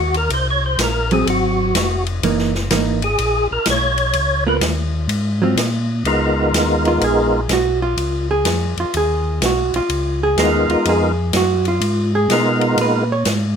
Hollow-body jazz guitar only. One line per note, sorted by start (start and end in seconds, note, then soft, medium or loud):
1.12 1.72 F#3 medium
1.12 1.72 C4 medium
2.24 2.52 E3 medium
2.24 2.52 A#3 medium
2.24 2.53 D#4 medium
2.71 2.99 E3 medium
2.71 3.00 A#3 medium
2.71 3.00 D#4 medium
4.47 4.61 B3 medium
4.47 4.61 F4 medium
4.47 4.62 A#4 medium
5.42 5.56 F#3 medium
5.42 5.57 C4 medium
5.42 5.57 F4 medium
6.88 7.02 F4 medium
7.04 7.48 G#4 medium
7.53 7.82 F#4 medium
7.82 8.27 F4 medium
8.31 8.75 G#4 medium
8.80 8.95 F4 medium
8.97 9.40 G#4 medium
9.46 9.75 F#4 medium
9.76 10.20 F4 medium
10.23 10.67 G#4 medium
10.71 10.86 F4 soft
10.89 11.32 G#4 medium
11.37 11.66 F#4 medium
11.68 12.11 F4 medium
12.15 12.59 G#4 medium
12.81 13.10 B4 medium
13.12 13.27 C#5 medium